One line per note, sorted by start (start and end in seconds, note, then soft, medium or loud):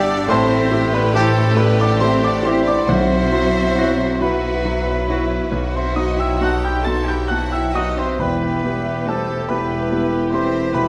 0.00 0.25 G1 medium
0.00 0.25 D4 loud
0.00 0.29 D4 medium
0.00 0.32 D4 medium
0.00 0.24 G4 loud
0.00 0.25 G4 medium
0.00 0.31 G4 medium
0.00 0.29 D5 loud
0.00 0.31 D5 medium
0.00 0.32 D5 loud
0.00 0.32 E5 medium
0.00 0.29 F#5 medium
0.00 0.31 F#5 medium
0.00 0.32 D6 loud
0.00 0.31 E6 loud
0.00 0.32 F#6 loud
0.27 2.88 A1 medium
0.27 0.70 A2 loud
0.27 2.89 A3 medium
0.27 0.92 C4 medium
0.27 2.87 E4 medium
0.27 2.84 G4 loud
0.27 0.93 C5 medium
0.27 0.96 C5 medium
0.27 0.95 E5 loud
0.27 0.90 A5 medium
0.27 0.89 C6 loud
0.32 0.90 C5 medium
0.71 1.10 A3 medium
0.71 1.10 E4 medium
0.71 1.10 G4 medium
0.92 1.13 B3 medium
0.92 1.14 B4 medium
0.92 1.18 B4 medium
0.92 1.16 D5 medium
0.92 1.14 B5 medium
0.96 1.15 B4 medium
1.13 1.30 E3 medium
1.13 1.56 A3 medium
1.13 1.53 A3 medium
1.13 1.53 E4 medium
1.13 1.30 E4 medium
1.13 1.53 G4 medium
1.13 1.29 G4 medium
1.13 1.57 A4 medium
1.13 1.56 A4 medium
1.13 1.62 A4 medium
1.13 1.58 C5 medium
1.13 1.55 A5 medium
1.55 1.96 A3 medium
1.55 1.79 B3 loud
1.55 1.96 E4 medium
1.55 1.96 G4 medium
1.55 1.78 B4 medium
1.55 1.79 D5 medium
1.55 1.77 B5 loud
1.60 1.80 B4 loud
1.78 2.01 D4 medium
1.78 2.00 D5 medium
1.78 2.07 D5 medium
1.78 2.01 D5 medium
1.78 2.00 F#5 medium
1.78 2.00 D6 loud
1.99 2.40 A3 medium
1.99 2.22 C4 medium
1.99 2.40 E4 medium
1.99 2.40 G4 medium
1.99 2.21 C5 medium
1.99 2.21 C6 loud
2.03 2.29 C5 medium
2.03 2.28 E5 medium
2.20 2.44 D4 medium
2.20 2.43 D5 medium
2.24 2.45 D5 medium
2.24 2.51 D5 medium
2.24 2.49 F#5 medium
2.24 2.44 D6 loud
2.42 2.61 E3 medium
2.42 2.84 A3 medium
2.42 2.67 C4 medium
2.42 2.83 E4 medium
2.42 2.61 E4 medium
2.42 2.84 G4 medium
2.42 2.60 G4 medium
2.42 2.66 C5 medium
2.42 2.65 C6 medium
2.47 2.66 C5 medium
2.47 2.72 C5 medium
2.47 2.71 E5 medium
2.65 2.89 D4 medium
2.65 2.87 D5 medium
2.65 2.88 D5 medium
2.65 2.87 D6 medium
2.70 2.92 D5 medium
2.70 2.90 F#5 medium
2.87 5.47 B1 medium
2.87 3.31 B1 medium
2.87 4.17 B2 medium
2.87 4.18 F#3 medium
2.87 4.19 C4 medium
2.87 4.18 E4 medium
2.87 4.18 F#4 medium
2.87 4.20 C5 loud
2.87 4.17 C5 medium
2.87 4.24 C5 loud
2.87 4.17 F#5 medium
2.87 4.16 C6 loud
2.91 4.20 E5 loud
3.32 3.72 F#3 medium
3.32 3.73 E4 medium
3.32 3.73 F#4 medium
3.75 4.16 F#3 medium
3.75 3.93 F#3 medium
3.75 4.16 E4 medium
3.75 3.93 E4 medium
3.75 4.17 F#4 medium
3.75 3.93 F#4 medium
4.20 4.61 F#3 medium
4.20 5.49 F#3 medium
4.20 5.73 B3 medium
4.20 4.61 E4 medium
4.20 5.50 E4 medium
4.20 5.04 F#4 medium
4.20 4.61 F#4 medium
4.20 5.73 B4 medium
4.20 5.77 B4 medium
4.20 5.71 B4 medium
4.20 5.49 E5 medium
4.20 5.70 B5 medium
4.24 5.71 F#5 medium
4.65 5.04 F#3 medium
4.65 5.04 E4 medium
4.65 5.05 F#4 medium
5.08 5.47 F#3 medium
5.08 5.24 F#3 medium
5.08 5.50 E4 medium
5.08 5.48 E4 medium
5.08 5.25 E4 medium
5.08 5.48 F#4 medium
5.08 5.24 F#4 medium
5.51 7.94 B1 medium
5.51 5.94 B1 medium
5.51 7.94 F#3 medium
5.51 7.98 D#4 medium
5.51 6.39 F#4 medium
5.74 5.96 C4 medium
5.74 5.96 C5 medium
5.74 6.00 E5 medium
5.74 5.95 C6 medium
5.95 6.36 B3 medium
5.95 6.17 D#4 medium
5.95 6.36 D#4 medium
5.95 6.36 F#4 medium
5.95 6.17 D#5 medium
5.95 6.18 D#5 medium
5.95 6.17 D#5 medium
5.95 6.20 F#5 medium
5.95 6.16 D#6 medium
6.16 6.39 E4 medium
6.16 6.41 E5 medium
6.16 6.44 G5 medium
6.16 6.40 E6 medium
6.20 6.40 E5 medium
6.20 6.45 E5 medium
6.39 6.56 F#3 medium
6.39 6.81 B3 medium
6.39 6.56 D#4 medium
6.39 6.81 D#4 soft
6.39 6.62 F#4 medium
6.39 6.56 F#4 medium
6.39 6.81 F#4 medium
6.39 6.85 G4 medium
6.39 6.62 F#5 medium
6.39 6.65 A5 medium
6.39 6.62 F#6 medium
6.44 6.66 F#5 medium
6.44 6.63 F#5 medium
6.62 6.84 G4 medium
6.62 6.84 G5 medium
6.62 6.87 G5 medium
6.62 6.84 G5 medium
6.62 6.89 B5 medium
6.62 6.84 G6 medium
6.83 7.26 B3 medium
6.83 7.26 D#4 medium
6.83 7.29 F#4 medium
6.83 7.26 F#4 medium
6.83 7.06 A4 medium
6.83 7.07 A5 medium
6.83 7.06 A5 medium
6.83 7.05 A6 medium
6.88 7.11 C6 medium
7.05 7.28 G4 medium
7.05 7.31 G5 medium
7.05 7.30 G5 medium
7.05 7.28 G5 medium
7.05 7.28 G6 medium
7.10 7.30 B5 medium
7.28 7.71 B3 soft
7.28 7.71 D#4 soft
7.28 7.52 E4 medium
7.28 7.51 F#4 medium
7.28 7.72 F#4 medium
7.28 7.50 F#5 medium
7.28 7.55 F#5 medium
7.28 7.52 F#5 medium
7.28 7.53 A5 medium
7.28 7.49 F#6 medium
7.52 7.75 E4 medium
7.52 7.76 F#4 medium
7.52 7.75 E5 medium
7.52 7.73 E5 medium
7.52 7.75 E5 medium
7.52 7.77 G5 medium
7.52 7.73 E6 medium
7.74 7.91 F#3 medium
7.74 8.15 B3 soft
7.74 8.16 D#4 soft
7.74 7.91 D#4 medium
7.74 7.98 D#4 medium
7.74 7.90 F#4 medium
7.74 8.16 F#4 medium
7.74 8.20 G4 medium
7.74 7.97 D#5 medium
7.74 8.00 D#5 medium
7.74 7.97 D#5 medium
7.74 7.99 F#5 medium
7.74 7.96 D#6 medium
7.97 8.19 C4 medium
7.97 8.24 C5 medium
7.97 8.20 C5 medium
7.97 8.19 C5 medium
7.97 8.20 E5 medium
7.97 8.19 C6 medium
8.18 9.33 E1 medium
8.18 9.44 E2 medium
8.18 8.62 E2 medium
8.18 10.88 E3 medium
8.18 8.39 G3 medium
8.18 9.05 B3 medium
8.18 8.39 E4 medium
8.18 10.88 E4 medium
8.18 10.88 G4 medium
8.18 9.07 B4 medium
8.18 9.03 B4 medium
8.18 8.41 B4 medium
8.18 9.09 E5 medium
8.18 9.03 G5 medium
8.18 9.03 B5 medium
8.22 9.10 B4 medium
8.40 8.62 E3 medium
8.40 8.63 B3 medium
8.45 8.65 G4 soft
8.62 8.84 G3 soft
8.62 9.02 B3 medium
8.62 8.84 E4 medium
8.62 9.03 E4 soft
8.62 9.03 G4 medium
8.62 8.86 B4 medium
8.86 9.07 E3 medium
8.86 9.07 B3 soft
8.86 9.07 G4 medium
9.07 9.26 G3 medium
9.07 9.49 A3 medium
9.07 9.45 B3 medium
9.07 9.26 E4 soft
9.07 9.45 E4 medium
9.07 9.45 G4 medium
9.07 9.49 A4 medium
9.07 9.47 A4 medium
9.07 9.51 A4 medium
9.07 9.27 B4 medium
9.07 9.50 C5 medium
9.07 9.47 A5 medium
9.28 9.49 E3 soft
9.28 9.49 B3 soft
9.28 9.50 G4 medium
9.48 10.58 E1 medium
9.48 9.70 G3 medium
9.48 10.32 B3 medium
9.48 9.87 B3 medium
9.48 9.70 E4 medium
9.48 9.87 E4 medium
9.48 9.87 G4 medium
9.48 9.69 B4 medium
9.48 10.32 B4 medium
9.48 10.30 B4 medium
9.48 10.28 B4 medium
9.48 10.06 E5 medium
9.48 10.28 G5 medium
9.48 10.27 B5 medium
9.69 9.90 E3 medium
9.69 9.90 B3 medium
9.69 9.90 G4 medium
9.89 10.09 G3 medium
9.89 10.28 B3 medium
9.89 10.09 E4 medium
9.89 10.28 E4 medium
9.89 10.29 G4 medium
9.89 10.10 B4 medium
10.11 10.31 E3 medium
10.11 10.32 B3 medium
10.11 10.33 G4 medium
10.30 10.53 G3 medium
10.30 10.69 B3 medium
10.30 10.73 C4 medium
10.30 10.69 E4 medium
10.30 10.53 E4 medium
10.30 10.70 G4 medium
10.30 10.53 B4 medium
10.30 10.75 C5 medium
10.30 10.72 C5 medium
10.30 10.71 E5 medium
10.30 10.71 C6 medium
10.35 10.72 C5 medium
10.54 10.74 E3 soft
10.54 10.74 B3 soft
10.54 10.74 G4 medium
10.72 10.88 E1 medium
10.72 10.88 B2 medium
10.72 10.88 B3 medium
10.72 10.88 B4 medium
10.72 10.88 E5 medium
10.72 10.88 B5 medium
10.76 10.88 G3 medium
10.76 10.88 E4 medium